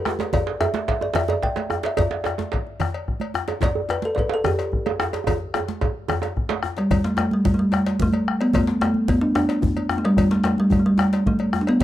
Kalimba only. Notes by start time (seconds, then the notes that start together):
Already playing: B4
0.33 D5
0.61 E5
0.89 E5
1.02 D5
1.16 E5
1.30 D5
1.43 G5
1.86 E5
1.99 D5
3.64 D5
3.91 B4
4.05 A4
4.15 D5
4.19 B4
4.34 A4
4.46 G4
6.78 G3
7.05 A3
7.19 A3
7.33 G3
7.54 A3
7.59 G3
8.02 A3
8.41 B3
8.54 A3
8.81 A3
9.09 B3
9.21 D4
9.35 D4
9.98 A3
10.05 G3
10.31 A3
10.45 A3
10.60 G3
10.79 A3
10.86 G3
11.27 A3
11.61 D4
11.69 B3